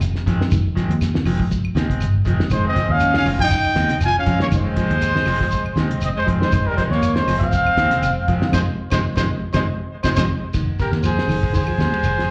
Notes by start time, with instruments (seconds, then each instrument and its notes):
0.01 fingered electric bass F1, closed hi-hat, claves, shekere
0.15 snare
0.26 fingered electric bass F2, clean electric guitar D#3 F3 G#3 C4, kick, snare, closed hi-hat, shekere
0.39 clean electric guitar D#3, muted fingered electric bass stroke, snare
0.51 fingered electric bass F1, clean electric guitar D#3, kick, closed hi-hat, claves, shekere
0.76 clean electric guitar D#3 F3 G#3 C4, kick, snare, closed hi-hat, shekere
0.89 fingered electric bass D#2, closed hi-hat
1.01 snare, closed hi-hat, claves, shekere
1.15 clean electric guitar D#3, snare
1.26 fingered electric bass F1, clean electric guitar D#3 F3 G#3 C4, open hi-hat, claves, shekere
1.40 clean electric guitar F3, kick
1.51 kick, closed hi-hat, shekere
1.64 muted fingered electric bass stroke, claves
1.75 fingered electric bass D#2, clean electric guitar D#3 G#3 C4, snare, closed hi-hat, shekere
1.88 clean electric guitar C3 G#3 C4, muted fingered electric bass stroke, kick, closed hi-hat
2.00 fingered electric bass G1, closed hi-hat, claves, shekere
2.25 fingered electric bass F1, clean electric guitar D#3 F3 G#3 C4, kick, closed hi-hat, shekere
2.40 clean electric guitar D#3, snare
2.50 fingered electric bass F1, clean electric guitar D#3, trumpet C5, kick, closed hi-hat, claves, shekere
2.54 alto saxophone G#3
2.64 clean electric guitar G#3 C4, trumpet D#5
2.69 alto saxophone C4
2.75 clean electric guitar D#3 F3 G#3, kick, snare, closed hi-hat, shekere
2.89 fingered electric bass D#2, trumpet F5
2.94 alto saxophone C#4
3.00 closed hi-hat, claves, shekere
3.14 clean electric guitar D#3, trumpet F5, snare
3.19 alto saxophone C#4
3.25 fingered electric bass F1, clean electric guitar D#3 F3 G#3 C4, open hi-hat, claves, shekere
3.39 clean electric guitar F3, trumpet G5, kick, closed hi-hat
3.44 alto saxophone D#4
3.51 kick, closed hi-hat, shekere
3.64 muted fingered electric bass stroke, claves
3.76 fingered electric bass D#2, clean electric guitar D#3 G#3 C4, muted clean electric guitar stroke, snare, closed hi-hat, shekere
3.88 clean electric guitar C3 G#3 C4, muted fingered electric bass stroke, closed hi-hat
4.00 fingered electric bass F1, trumpet G#5, closed hi-hat, claves, shekere
4.06 alto saxophone F4
4.19 alto saxophone C#4, trumpet F5
4.26 fingered electric bass F2, clean electric guitar D#3 F3 G#3 C4, kick, closed hi-hat, shekere
4.38 clean electric guitar D#3, trumpet C#5, muted fingered electric bass stroke, snare
4.43 alto saxophone A#3
4.51 fingered electric bass F1, clean electric guitar D#3, alto saxophone G#3, trumpet C5, kick, closed hi-hat, claves, shekere
4.64 clean electric guitar G#3 C4
4.76 clean electric guitar D#3 F3 G#3 C4, kick, closed hi-hat, shekere
4.90 fingered electric bass D#2, closed hi-hat
5.02 closed hi-hat, claves, shekere
5.15 clean electric guitar D#3, snare
5.26 fingered electric bass F1, clean electric guitar D#3 F3 G#3 C4, open hi-hat, claves, shekere
5.41 clean electric guitar F3, kick, snare
5.51 kick, closed hi-hat, shekere
5.64 muted fingered electric bass stroke, claves
5.75 fingered electric bass D#2, clean electric guitar D#3 G#3 C4, snare, closed hi-hat, shekere
5.89 clean electric guitar C3 G#3 C4, muted fingered electric bass stroke, closed hi-hat
6.01 fingered electric bass F1, alto saxophone C4, trumpet D#5, closed hi-hat, claves, shekere
6.17 alto saxophone G#3, trumpet C5
6.26 fingered electric bass F2, clean electric guitar D#3 F3 G#3 C4, kick, closed hi-hat, shekere
6.40 clean electric guitar D#3, alto saxophone G#3, trumpet C5, muted fingered electric bass stroke, snare
6.52 fingered electric bass F1, clean electric guitar D#3, kick, closed hi-hat, claves, shekere
6.65 alto saxophone G3, clean electric guitar G#3 C4, trumpet A#4
6.77 clean electric guitar D#3 F3 G#3 C4, alto saxophone G#3, trumpet C5, kick, snare, closed hi-hat, shekere
6.90 fingered electric bass D#2, alto saxophone A#3, trumpet C#5, snare
7.02 closed hi-hat, claves, shekere
7.15 clean electric guitar D#3, alto saxophone G#3, trumpet C5, snare
7.27 fingered electric bass F1, clean electric guitar F3 G#3 C4, snare, open hi-hat, claves, shekere
7.39 clean electric guitar F3, alto saxophone C4, trumpet F5, kick, closed hi-hat
7.52 kick, closed hi-hat, shekere
7.65 muted fingered electric bass stroke, claves
7.77 fingered electric bass D#2, clean electric guitar D#3 G#3 C4, snare, closed hi-hat, shekere
7.90 clean electric guitar C3 G#3 C4, muted fingered electric bass stroke, snare, closed hi-hat
8.02 fingered electric bass F1, closed hi-hat, claves, shekere
8.28 fingered electric bass F2, clean electric guitar D#3 F3 G#3 C4, kick, closed hi-hat, shekere
8.40 clean electric guitar D#3, muted fingered electric bass stroke, snare
8.52 fingered electric bass F2, clean electric guitar C3 D#3 F3 G#3 C4, alto saxophone G#3, trumpet C5, kick, snare, claves, shekere
8.91 fingered electric bass F2, clean electric guitar C3 D#3 F3 G#3 C4, alto saxophone G#3, trumpet C5, kick, snare, claves, shekere
9.16 fingered electric bass F2, clean electric guitar C3 D#3 F3 G#3 C4, alto saxophone G#3, trumpet C5, kick, snare, claves, shekere
9.53 fingered electric bass F2, clean electric guitar C3 D#3 F3 G#3 C4, alto saxophone G#3, trumpet C5, kick, snare, claves, shekere
10.03 fingered electric bass F2, clean electric guitar C3 D#3 F3 G#3 C4, alto saxophone G#3, trumpet C5, kick, snare, claves, shekere
10.16 fingered electric bass F2, clean electric guitar C3 D#3 F3 G#3 C4, alto saxophone G#3, trumpet C5, kick, snare, claves, shekere
10.54 fingered electric bass F1, clean electric guitar D#3, kick, snare, ride bell, claves, shekere
10.79 alto saxophone G4, trumpet A#4, kick, snare, ride bell, shekere
10.91 fingered electric bass D#2, snare, ride bell
11.03 clean electric guitar F3, alto saxophone G#4, trumpet C5, ride bell, claves, shekere
11.19 snare
11.28 fingered electric bass F1, clean electric guitar D#3, snare, open hi-hat, claves, shekere
11.43 kick, ride bell
11.53 clean electric guitar D#3, alto saxophone G#4, trumpet C5, kick, ride bell, shekere
11.67 clean electric guitar F3, muted fingered electric bass stroke, claves
11.78 fingered electric bass D#2, snare, ride bell, shekere
11.92 clean electric guitar G3, muted fingered electric bass stroke, ride bell
12.03 fingered electric bass F1, ride bell, claves, shekere
12.18 clean electric guitar F3, snare